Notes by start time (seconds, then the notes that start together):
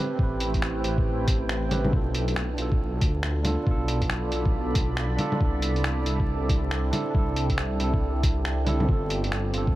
Already playing: A3 C4 E4 G4 B4 G5
0.00 B4
0.15 A1 C4 G4, kick
0.23 B4
0.40 closed hi-hat
0.54 kick, closed hi-hat
0.62 finger snap
0.80 C4
0.84 A1 G4, closed hi-hat
0.88 B4
0.98 kick
1.28 A1, kick, closed hi-hat
1.49 finger snap
1.69 C4 G4, closed hi-hat, low bongo
1.73 B4
1.85 D4, low bongo
1.93 B1 B3 F4 A4, kick
2.13 F4, closed hi-hat
2.26 D5, closed hi-hat
2.36 A4, finger snap
2.54 D4, closed hi-hat
2.58 B1 F4 A4
2.65 B5
2.72 kick
3.01 D2, kick, closed hi-hat
3.23 finger snap
3.43 D4 F4, closed hi-hat, low bongo
3.47 A4
3.63 B1 D4 F4, kick
3.71 A4
3.88 closed hi-hat
4.02 kick, closed hi-hat
4.10 finger snap
4.28 B1 D4, closed hi-hat
4.32 F4 A4
4.45 kick
4.75 B1, kick, closed hi-hat
4.97 finger snap
5.17 D4 F4 A4, closed hi-hat, low bongo
5.32 low bongo
5.36 D4
5.41 C2 C4 E4 A4, kick
5.61 G4, closed hi-hat
5.76 closed hi-hat
5.84 finger snap
6.02 D4 E4
6.06 C2 A4, closed hi-hat
6.19 kick
6.26 E5
6.49 kick, closed hi-hat
6.71 finger snap
6.91 D4 E4 A4, closed hi-hat, low bongo
7.10 D4
7.15 C2 E4, kick
7.19 A4
7.36 closed hi-hat
7.50 kick, closed hi-hat
7.58 finger snap
7.76 D4
7.80 C2 E4 A4, closed hi-hat
7.93 kick
8.23 C2, kick, closed hi-hat
8.45 finger snap
8.65 D4 E4, closed hi-hat, low bongo
8.69 A4
8.80 low bongo
8.84 C4
8.89 G1 G3 F4 A4, kick
9.08 F5, closed hi-hat
9.24 closed hi-hat
9.32 finger snap
9.40 C5
9.50 C4, closed hi-hat
9.54 G1 F4 A4
9.67 kick